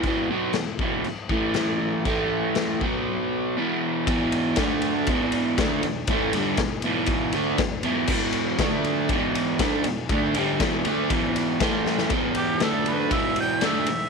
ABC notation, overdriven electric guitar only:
X:1
M:4/4
L:1/8
Q:1/4=119
K:Alyd
V:1 name="Overdriven electric guitar" clef=bass
[E,,B,,E,] [B,,F,B,] [E,,B,,] [E,,B,,E,] z [A,,E,A,]3 | [A,,E,A,]3 [B,,F,B,]3 [E,,B,,E,]2 | [E,,B,,E,]2 [=D,A,=D]2 [E,,B,,E,]2 [D,A,D] [E,,B,,] | [A,,E,A,] [=G,,=D,=G,] [E,,B,,] [E,,B,,E,]2 [D,A,=D] [E,,B,,] [E,,B,,E,] |
[E,,B,,E,]2 [=D,A,=D]2 [E,,B,,E,]2 [D,A,D] [E,,B,,] | [=D,A,=D] [=G,,D,=G,] [E,,B,,E,] [D,A,D] [E,,B,,E,]2 [A,,E,A,]2 | [E,,B,,E,]2 [=D,A,=D]2 [E,,B,,E,]2 [D,A,D] [E,,B,,] |]